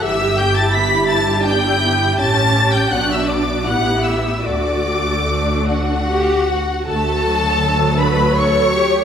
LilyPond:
<<
  \new Staff \with { instrumentName = "Violin section" } { \time 3/4 \key d \major \tempo 4 = 81 e'''8 g'''16 a'''16 b'''8 a'''8 g'''4 | a'''8. g'''16 fis'''16 e'''16 d'''8 fis'''8 e'''8 | d'''4. fis''4. | a''4. b''8 cis'''4 | }
  \new Staff \with { instrumentName = "Violin section" } { \time 3/4 \key d \major e''8 g''16 a''16 b''8 a''8 g''4 | a''8. g''16 fis''16 e''16 d''8 fis''8 e''8 | d''4. fis'4. | a'4. b'8 cis''4 | }
  \new Staff \with { instrumentName = "Cello section" } { \time 3/4 \key d \major g'4 e'4 d'8 e'8 | cis'4 d'4 e'4 | fis'4 d'4 g'8 fis'8 | d,2. | }
  \new Staff \with { instrumentName = "Viola section" } { \time 3/4 \key d \major << { g'2. | g'4 fis'4 g'4 | fis'2~ fis'8. r16 | fis'4 a'4 a'8 g'8 | } \\ { e16 g16 b16 e'16 b16 g16 e16 g16 b16 e'16 b16 g16 | cis'4 b4 b4 | a2~ a8. r16 | a8 fis2~ fis8 | } >> }
  \new Staff \with { instrumentName = "Double bass section" } { \clef bass \time 3/4 \key d \major g,,2. | a,,4 b,,4 a,,4 | d,2~ d,8. r16 | d,2. | }
>>